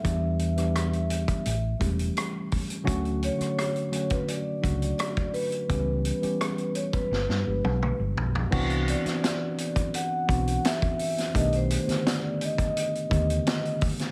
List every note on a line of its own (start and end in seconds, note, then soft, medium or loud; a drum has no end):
0.00 0.53 E3 medium
0.00 0.53 G3 medium
0.00 1.78 E5 medium
0.05 1.24 E2 loud
0.05 0.53 B3 medium
0.05 0.53 D4 medium
0.05 0.54 G4 loud
0.05 kick loud
0.05 closed hi-hat medium
0.39 closed hi-hat medium
0.57 1.46 E3 medium
0.57 1.46 G3 medium
0.57 1.46 B3 medium
0.57 1.46 D4 medium
0.57 1.46 G4 medium
0.57 cross-stick soft
0.57 closed hi-hat soft
0.76 cross-stick loud
0.76 closed hi-hat medium
0.93 closed hi-hat soft
1.10 closed hi-hat medium
1.28 kick medium
1.28 closed hi-hat medium
1.46 1.73 A1 medium
1.46 closed hi-hat medium
1.79 2.08 E1 medium
1.79 2.77 E3 medium
1.79 2.78 G3 medium
1.79 2.78 A3 medium
1.79 2.78 C#4 medium
1.79 2.78 G4 medium
1.79 kick medium
1.79 closed hi-hat medium
1.99 closed hi-hat soft
2.17 cross-stick loud
2.17 closed hi-hat medium
2.52 kick medium
2.52 open hi-hat medium
2.70 closed hi-hat soft
2.84 3.28 D2 loud
2.84 3.34 D3 loud
2.84 3.35 F#3 loud
2.84 3.34 A3 loud
2.84 3.35 C#4 loud
2.84 3.35 F#4 loud
2.84 kick loud
2.84 closed hi-hat medium
3.05 closed hi-hat soft
3.23 4.14 C#5 medium
3.23 closed hi-hat medium
3.37 3.87 D3 medium
3.37 3.88 F#3 medium
3.37 3.88 A3 medium
3.37 3.88 C#4 soft
3.37 3.88 F#4 medium
3.37 muted fingered electric bass stroke soft
3.37 closed hi-hat soft
3.42 cross-stick soft
3.59 cross-stick medium
3.59 closed hi-hat medium
3.76 closed hi-hat soft
3.91 4.57 D3 medium
3.91 4.57 F#3 medium
3.91 4.57 A3 medium
3.91 4.58 C#4 medium
3.91 4.57 F#4 medium
3.91 closed hi-hat medium
4.10 4.30 B4 medium
4.10 kick medium
4.10 closed hi-hat medium
4.28 4.97 D5 medium
4.28 closed hi-hat medium
4.62 4.91 C#2 medium
4.62 5.60 F#3 medium
4.62 5.60 A3 medium
4.62 5.60 D4 medium
4.62 5.61 F#4 medium
4.62 kick medium
4.62 closed hi-hat medium
4.82 closed hi-hat soft
4.98 5.32 D5 medium
4.98 cross-stick loud
4.98 closed hi-hat medium
5.17 kick loud
5.17 closed hi-hat soft
5.34 6.72 B4 medium
5.34 open hi-hat medium
5.52 closed hi-hat soft
5.69 6.10 C#2 loud
5.69 6.18 E3 medium
5.69 6.18 G3 medium
5.69 6.18 B3 medium
5.69 6.18 C#4 medium
5.69 6.19 G4 loud
5.69 kick loud
5.69 closed hi-hat medium
6.05 closed hi-hat medium
6.22 7.11 E3 medium
6.22 7.11 G3 medium
6.22 7.11 B3 medium
6.22 7.11 C#4 medium
6.22 7.12 G4 medium
6.22 muted fingered electric bass stroke soft
6.22 closed hi-hat soft
6.41 cross-stick loud
6.41 closed hi-hat medium
6.58 closed hi-hat soft
6.75 6.94 C#5 medium
6.75 closed hi-hat medium
6.93 7.95 B4 medium
6.93 kick medium
6.93 closed hi-hat soft
7.11 7.25 G1 medium
7.11 snare soft
7.29 7.42 G2 medium
7.29 snare medium
7.46 7.60 G1 medium
7.46 8.43 F3 medium
7.46 8.43 G#3 medium
7.46 8.43 B3 medium
7.46 8.43 D4 medium
7.46 8.44 G4 medium
7.64 7.91 B1 medium
7.64 high tom medium
7.83 mid tom medium
7.99 8.13 G1 medium
8.16 8.44 B1 medium
8.16 floor tom medium
8.35 floor tom medium
8.51 8.93 C2 loud
8.51 9.00 E3 loud
8.51 9.00 B3 loud
8.51 9.00 C4 loud
8.51 9.01 D4 loud
8.51 9.01 F#4 loud
8.51 kick loud
8.51 crash medium
8.70 closed hi-hat soft
8.88 9.98 D5 medium
8.88 closed hi-hat medium
9.04 10.18 E3 medium
9.04 10.18 B3 medium
9.04 10.18 C4 soft
9.04 10.18 D4 medium
9.04 10.18 F#4 medium
9.04 muted fingered electric bass stroke soft
9.04 snare soft
9.04 closed hi-hat soft
9.24 snare loud
9.24 closed hi-hat medium
9.58 closed hi-hat medium
9.76 kick medium
9.76 closed hi-hat medium
9.94 10.67 F#5 loud
9.94 closed hi-hat medium
10.27 10.56 B1 medium
10.27 11.25 E3 medium
10.27 11.25 B3 medium
10.27 11.25 C4 medium
10.27 11.25 D4 medium
10.27 11.25 F#4 medium
10.27 kick medium
10.27 closed hi-hat medium
10.47 closed hi-hat soft
10.65 11.31 E5 loud
10.65 snare loud
10.65 closed hi-hat medium
10.82 kick medium
10.82 closed hi-hat soft
10.99 open hi-hat medium
11.18 snare soft
11.18 closed hi-hat soft
11.34 11.75 B1 loud
11.34 11.83 D#3 loud
11.34 11.83 A3 medium
11.34 11.83 B3 medium
11.34 11.83 D4 medium
11.34 11.84 G4 loud
11.34 11.53 D#5 medium
11.34 kick loud
11.34 closed hi-hat medium
11.53 12.08 C5 medium
11.53 closed hi-hat soft
11.70 closed hi-hat medium
11.87 13.01 D3 medium
11.87 13.00 D#3 medium
11.87 13.00 A3 medium
11.87 13.00 B3 medium
11.87 13.01 G4 medium
11.87 muted fingered electric bass stroke soft
11.87 snare soft
11.87 closed hi-hat soft
12.07 12.43 D5 medium
12.07 snare loud
12.07 closed hi-hat medium
12.41 13.80 D#5 medium
12.41 closed hi-hat medium
12.58 kick medium
12.58 closed hi-hat medium
12.77 closed hi-hat medium
12.95 closed hi-hat soft
13.10 13.38 D#2 medium
13.10 14.08 D3 medium
13.10 14.07 D#3 medium
13.10 14.08 A3 medium
13.10 14.08 B3 medium
13.10 14.08 G4 medium
13.10 kick medium
13.10 closed hi-hat medium
13.30 closed hi-hat medium
13.47 snare loud
13.47 closed hi-hat medium
13.65 closed hi-hat soft
13.81 kick medium
13.81 open hi-hat medium
13.99 snare soft
13.99 closed hi-hat soft